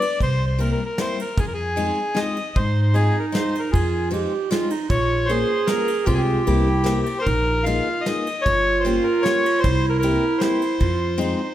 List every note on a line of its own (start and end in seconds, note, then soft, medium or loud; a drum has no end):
0.00 0.19 D5 loud
0.00 ride medium
0.20 0.71 C2 medium
0.20 0.45 C5 loud
0.20 kick medium
0.20 ride soft
0.47 0.60 C5 medium
0.58 0.79 G3 medium
0.58 0.79 A#3 medium
0.58 0.79 C4 medium
0.58 0.79 E4 medium
0.58 0.70 A#4 medium
0.58 ride soft
0.72 0.84 A#4 medium
0.85 0.99 A#4 medium
0.98 1.19 G3 medium
0.98 1.19 A#3 soft
0.98 1.19 C4 soft
0.98 1.19 E4 medium
0.98 1.20 C5 loud
0.98 snare medium
0.98 ride soft
1.19 1.40 A#4 medium
1.19 ride soft
1.38 1.89 F2 medium
1.38 1.46 G#4 medium
1.38 kick medium
1.38 ride soft
1.48 1.53 A#4 medium
1.54 2.19 G#4 medium
1.76 1.97 G#3 medium
1.76 1.97 C4 soft
1.76 1.97 D#4 medium
1.76 1.97 F4 soft
1.76 ride soft
2.14 2.36 G#3 medium
2.14 2.36 C4 soft
2.14 2.36 D#4 medium
2.14 2.36 F4 medium
2.14 2.57 D#5 medium
2.14 snare medium
2.14 ride medium
2.36 ride soft
2.56 3.07 G#2 medium
2.56 3.73 D#4 loud
2.56 2.81 C5 medium
2.56 kick medium
2.56 ride soft
2.82 2.96 C5 medium
2.94 3.15 G#3 medium
2.94 3.15 C4 soft
2.94 3.15 D#4 medium
2.94 3.15 F4 medium
2.94 3.19 G#4 medium
2.94 ride soft
3.19 3.26 A#4 medium
3.32 3.54 G#3 medium
3.32 3.54 C4 soft
3.32 3.54 D#4 soft
3.32 3.54 F4 medium
3.32 3.61 C5 medium
3.32 snare medium
3.32 ride soft
3.55 3.73 A#4 medium
3.55 ride soft
3.71 4.24 F2 medium
3.71 4.15 F4 medium
3.71 4.09 G#4 medium
3.71 kick medium
3.71 ride soft
4.11 4.32 G#3 medium
4.11 4.32 C4 medium
4.11 4.32 D#4 medium
4.11 4.32 F4 medium
4.11 4.53 G4 medium
4.11 ride soft
4.51 4.71 G#3 medium
4.51 4.72 C4 medium
4.51 4.72 D#4 medium
4.51 4.72 F4 loud
4.51 4.72 F4 medium
4.51 snare medium
4.51 ride soft
4.70 4.91 D#4 medium
4.70 ride soft
4.89 5.42 A#1 medium
4.89 5.29 F4 loud
4.89 5.31 C#5 loud
4.89 kick medium
4.89 ride soft
5.26 5.50 A#3 medium
5.26 5.50 C#4 medium
5.26 5.68 C5 loud
5.26 ride soft
5.30 5.50 F4 medium
5.30 6.08 G#4 medium
5.30 5.50 G#4 medium
5.66 5.88 A#3 medium
5.66 5.89 C#4 medium
5.66 5.89 F4 medium
5.66 5.89 G#4 medium
5.66 6.08 A#4 medium
5.66 snare medium
5.66 ride medium
5.88 ride medium
6.04 6.33 C2 medium
6.04 6.39 G#3 medium
6.04 6.39 C4 medium
6.04 6.48 F4 loud
6.04 6.39 F4 medium
6.04 6.14 G4 medium
6.04 6.39 G#4 medium
6.04 kick medium
6.04 ride medium
6.14 7.01 G4 medium
6.14 6.22 G#4 medium
6.47 6.99 C2 loud
6.47 6.68 A#3 medium
6.47 6.68 C4 medium
6.47 7.08 E4 medium
6.47 6.68 E4 medium
6.47 6.68 G4 medium
6.47 ride medium
6.84 7.06 A#3 medium
6.84 7.06 C4 medium
6.84 7.07 E4 soft
6.84 7.07 G4 medium
6.84 snare medium
6.84 ride medium
7.03 7.18 G4 medium
7.03 ride soft
7.19 7.65 A#4 loud
7.19 7.27 C5 medium
7.25 7.79 A#1 medium
7.25 7.66 D#4 medium
7.25 kick medium
7.25 ride soft
7.64 7.87 A#3 medium
7.64 7.87 D#4 medium
7.64 8.18 F4 medium
7.64 7.87 F4 soft
7.64 7.87 G#4 medium
7.64 8.06 F5 loud
7.64 ride medium
8.01 8.45 D#5 loud
8.06 8.27 A#3 medium
8.06 8.27 D#4 medium
8.06 8.27 F4 soft
8.06 8.27 G#4 medium
8.06 snare medium
8.06 ride soft
8.27 ride soft
8.42 9.66 F4 loud
8.42 8.84 C#5 loud
8.46 8.97 G1 medium
8.46 kick medium
8.46 ride soft
8.80 9.04 C5 medium
8.85 9.05 A#3 medium
8.85 9.05 C#4 medium
8.85 9.05 F4 medium
8.85 9.06 G4 medium
8.85 ride soft
9.03 9.24 A#4 medium
9.22 9.44 A#3 medium
9.22 9.44 C#4 medium
9.22 9.44 F4 medium
9.22 9.44 G4 medium
9.22 9.60 C#5 loud
9.22 snare medium
9.22 ride soft
9.46 ride medium
9.59 9.86 C5 loud
9.64 10.15 C2 loud
9.64 10.84 E4 loud
9.64 kick medium
9.64 ride soft
9.90 9.97 A#4 medium
9.99 10.41 A#4 loud
9.99 ride soft
10.03 10.23 A#3 medium
10.03 10.23 C4 medium
10.03 10.23 E4 medium
10.03 10.23 G4 medium
10.38 10.61 A#3 medium
10.38 10.61 C4 soft
10.38 10.62 E4 medium
10.38 10.61 G4 medium
10.38 11.54 C5 medium
10.38 snare medium
10.38 ride soft
10.62 ride soft
10.80 11.33 F2 medium
10.80 11.22 F4 medium
10.80 kick medium
10.80 ride soft
11.18 11.40 G#3 medium
11.18 11.40 C4 medium
11.18 11.40 D#4 medium
11.18 11.54 D#4 medium
11.18 11.40 F4 medium
11.18 ride soft